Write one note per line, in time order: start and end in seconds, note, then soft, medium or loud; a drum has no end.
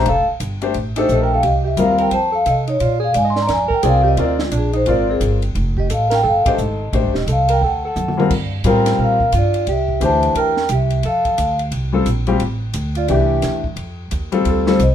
0.06 0.26 F1 medium
0.06 0.28 A4 medium
0.06 0.20 F5 medium
0.06 ride medium
0.28 muted upright bass stroke soft
0.40 0.74 G1 loud
0.40 hi-hat pedal medium
0.40 ride medium
0.62 0.73 A3 medium
0.62 0.74 D4 medium
0.62 0.74 G4 medium
0.62 0.74 C5 medium
0.62 ride soft
0.74 1.08 A1 medium
0.74 ride medium
0.96 1.41 A3 medium
0.96 1.41 D4 medium
0.96 1.08 D#4 medium
0.96 1.42 G4 medium
0.96 1.42 A4 medium
0.96 1.10 C5 medium
0.96 ride medium
1.09 1.43 A#1 medium
1.09 1.21 A4 medium
1.09 1.22 D#5 medium
1.09 hi-hat pedal medium
1.22 1.32 A#4 medium
1.22 1.33 G5 medium
1.34 1.43 A4 medium
1.34 1.44 F5 medium
1.43 1.76 C2 medium
1.43 1.63 G4 medium
1.43 1.66 D#5 medium
1.43 ride medium
1.64 1.77 G4 medium
1.64 1.79 E5 medium
1.77 2.11 D#2 medium
1.77 2.12 G3 medium
1.77 2.12 C4 medium
1.77 2.13 F4 medium
1.77 1.98 A#4 medium
1.77 2.13 A#4 medium
1.77 hi-hat pedal medium
1.77 ride medium
1.82 2.01 F5 medium
1.98 2.11 A#4 medium
1.98 2.13 G5 medium
1.98 ride soft
2.11 2.45 F2 medium
2.11 2.31 C5 medium
2.11 2.34 A5 medium
2.11 ride medium
2.32 2.45 A4 medium
2.32 2.47 F5 medium
2.46 2.80 C3 medium
2.46 2.66 A4 medium
2.46 2.69 D#5 medium
2.46 hi-hat pedal medium
2.46 ride medium
2.67 2.80 D#4 medium
2.67 2.81 C#5 medium
2.67 ride soft
2.80 3.14 A#2 medium
2.80 2.99 F4 medium
2.80 3.03 D5 medium
2.80 ride medium
3.00 3.13 G#4 medium
3.04 3.16 F5 medium
3.14 3.48 G#2 medium
3.14 3.24 D5 medium
3.14 3.27 G#5 medium
3.14 hi-hat pedal medium
3.14 ride medium
3.25 3.35 D#5 medium
3.30 3.39 C6 loud
3.36 3.47 D5 medium
3.36 snare soft
3.42 3.51 A#5 medium
3.48 3.69 F2 medium
3.48 3.68 D5 medium
3.48 snare soft
3.48 ride medium
3.53 3.72 G#5 medium
3.68 3.81 A#4 medium
3.68 muted upright bass stroke soft
3.68 kick medium
3.74 3.85 G5 medium
3.83 4.17 C2 medium
3.83 4.17 C4 medium
3.83 4.17 F4 medium
3.83 4.03 G#4 medium
3.83 4.18 A#4 medium
3.83 4.19 D5 medium
3.83 hi-hat pedal medium
3.83 ride medium
3.88 4.07 F5 medium
4.03 4.16 G4 medium
4.08 4.19 D#5 medium
4.17 4.51 D2 medium
4.17 4.38 C4 medium
4.17 4.38 F4 medium
4.17 4.38 A#4 medium
4.17 4.38 D5 medium
4.17 ride medium
4.23 4.42 D5 medium
4.39 4.51 G#3 soft
4.39 snare medium
4.43 4.54 F4 medium
4.51 4.85 A#1 medium
4.51 4.72 D4 medium
4.51 hi-hat pedal medium
4.51 ride medium
4.58 4.76 G#4 medium
4.73 4.86 D#4 medium
4.73 4.88 C5 medium
4.73 ride soft
4.86 5.20 G#1 medium
4.86 5.38 C4 medium
4.86 5.38 F4 medium
4.86 5.07 F4 medium
4.86 5.39 A#4 medium
4.86 5.39 D5 medium
4.86 ride medium
4.90 5.09 D5 medium
5.09 5.21 C4 medium
5.09 5.18 G#4 medium
5.20 5.54 G1 medium
5.20 hi-hat pedal medium
5.20 ride medium
5.42 ride soft
5.55 5.89 F1 medium
5.55 ride medium
5.77 5.89 G4 medium
5.77 5.91 D#5 medium
5.77 kick medium
5.90 6.23 A1 medium
5.90 6.10 A4 medium
5.90 6.12 F5 medium
5.90 hi-hat pedal medium
5.90 ride medium
6.10 6.23 A#4 medium
6.10 snare soft
6.10 ride medium
6.14 6.25 G5 loud
6.23 6.44 G1 medium
6.23 6.44 A4 medium
6.28 6.47 F5 medium
6.45 6.57 A3 medium
6.45 6.58 D4 medium
6.45 6.58 G4 medium
6.45 6.89 A4 medium
6.45 6.58 C5 medium
6.45 6.91 D#5 medium
6.45 muted upright bass stroke soft
6.45 kick medium
6.45 ride medium
6.58 6.92 G#1 medium
6.58 hi-hat pedal medium
6.93 7.04 A1 medium
6.93 7.12 A3 medium
6.93 7.12 D4 medium
6.93 7.13 G4 medium
6.93 7.13 C5 medium
6.93 ride medium
7.04 7.15 G1 medium
7.14 7.26 D#1 medium
7.14 7.26 G4 medium
7.14 snare soft
7.18 7.29 D#5 medium
7.27 7.60 C2 medium
7.27 7.48 A4 medium
7.27 hi-hat pedal soft
7.27 ride medium
7.32 7.50 F5 medium
7.49 7.61 A#4 medium
7.49 ride medium
7.53 7.63 G5 loud
7.61 7.95 D2 medium
7.61 7.83 A4 medium
7.67 7.85 F#5 medium
7.85 8.28 A4 medium
7.85 8.29 F#5 medium
7.96 8.29 F#2 medium
7.96 hi-hat pedal medium
7.96 mid tom soft
8.08 mid tom medium
8.17 8.29 G3 medium
8.17 8.29 C4 medium
8.17 8.30 F4 medium
8.17 8.30 A#4 medium
8.17 mid tom medium
8.30 8.64 G2 medium
8.30 kick medium
8.30 crash medium
8.64 8.98 A2 medium
8.64 9.16 G3 medium
8.64 9.16 C4 medium
8.64 9.17 F4 medium
8.64 8.97 A#4 medium
8.64 9.17 A#4 medium
8.64 hi-hat pedal medium
8.64 ride medium
8.69 8.99 G5 medium
8.86 snare soft
8.86 ride medium
8.99 9.32 A#2 medium
8.99 9.31 A#4 medium
9.04 9.33 F5 medium
9.20 kick medium
9.32 9.66 G2 medium
9.32 9.66 F4 medium
9.32 hi-hat pedal medium
9.32 ride medium
9.38 9.68 D5 medium
9.54 ride soft
9.67 10.01 C2 medium
9.67 10.03 G4 medium
9.67 ride medium
9.72 10.22 E5 medium
9.88 kick soft
10.00 10.34 D2 medium
10.00 10.52 E3 medium
10.00 10.53 A3 medium
10.00 10.53 D4 medium
10.00 10.53 G4 medium
10.00 10.35 C5 medium
10.00 hi-hat pedal medium
10.00 ride medium
10.05 10.35 A5 medium
10.23 ride soft
10.35 10.68 E2 medium
10.35 10.68 A#4 medium
10.35 ride medium
10.39 10.70 G5 medium
10.57 snare soft
10.69 11.03 C2 medium
10.69 11.03 G4 medium
10.69 hi-hat pedal medium
10.69 ride medium
10.74 11.04 E5 medium
10.90 ride soft
11.03 11.37 F2 medium
11.03 11.56 A4 medium
11.03 11.57 F5 medium
11.03 ride medium
11.25 kick soft
11.25 ride soft
11.38 11.71 D2 medium
11.38 hi-hat pedal medium
11.38 ride medium
11.59 ride soft
11.72 12.05 C2 medium
11.72 ride medium
11.93 12.05 G3 medium
11.93 12.05 C4 medium
11.93 12.05 F4 medium
11.93 12.06 A4 medium
12.06 12.40 A#1 medium
12.06 hi-hat pedal medium
12.06 ride medium
12.27 12.39 G3 medium
12.27 12.39 C4 medium
12.27 12.40 F4 medium
12.27 12.40 G4 medium
12.27 ride soft
12.40 12.74 A1 medium
12.40 ride medium
12.74 13.08 D2 medium
12.74 hi-hat pedal medium
12.74 ride medium
12.95 13.09 F4 medium
12.95 13.10 D5 medium
12.95 ride soft
13.08 13.42 C2 medium
13.08 13.60 E3 medium
13.08 13.61 A3 medium
13.08 13.61 D4 medium
13.08 13.61 G4 medium
13.08 13.62 E5 medium
13.08 ride medium
13.42 13.76 E2 medium
13.42 snare soft
13.42 hi-hat pedal medium
13.42 ride medium
13.64 kick medium
13.76 14.10 F2 medium
13.76 ride medium
14.11 14.45 D#2 medium
14.11 hi-hat pedal medium
14.11 ride medium
14.32 14.65 G3 medium
14.32 14.65 C4 medium
14.32 14.65 F4 medium
14.32 14.65 A4 medium
14.32 ride soft
14.45 14.78 D2 medium
14.45 ride medium
14.50 14.69 A4 medium
14.67 14.79 G3 medium
14.67 14.79 C4 medium
14.67 14.79 F4 medium
14.67 14.79 A4 medium
14.67 14.81 C5 medium
14.67 snare soft
14.79 14.95 C2 medium
14.79 14.95 D#5 medium
14.79 hi-hat pedal medium
14.79 ride medium